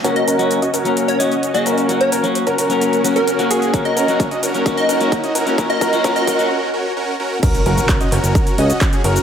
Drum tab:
CC |----------------|----------------|----------------|----------------|
HH |xxoxxxoxxxoxxxox|xxoxxxoxxxoxxxox|xxoxxxoxxxoxxxox|xxoxxxox--------|
SH |x-xxxxxxxxxxxxxx|x-xxxxxxxxxxxxxx|x-xxxxxxxxxxxxxx|x-xxxxxx--------|
CP |----------------|----------------|----------------|----------------|
BD |----------------|----------------|o---o---o---o---|o-o-o-o---------|

CC |x---------------|
HH |xxoxxxoxxxoxxxox|
SH |xx-xxx-xxx-xxx-x|
CP |----x-x-----x---|
BD |o---o---o---o---|